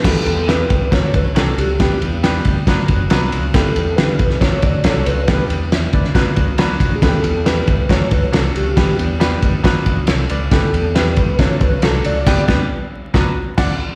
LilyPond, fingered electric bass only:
\new Staff \with { instrumentName = "Fingered electric bass" } { \clef bass \time 4/4 \key e \dorian \tempo 4 = 138 d,8 e,4 cis,8 d,8 cis,8 c,8 cis,8 | d,8 e,4 d,8 d,8 fis,,8 c,8 cis,8 | d,8 e,8 d8 b,,8 d,8 d,8 c,8 cis,8 | d,8 e,4 d,8 d,8 cis,8 d,16 r16 b,,16 d,16 |
d,8 e,4 cis,8 d,8 cis,8 c,8 cis,8 | d,8 e,4 d,8 d,8 cis,8 c,8 cis,8 | d,8 e,4 cis,8 d,8 cis,8 c,8 cis,8 | d,8 d,8 r4 d,8 r8 d,8 r8 | }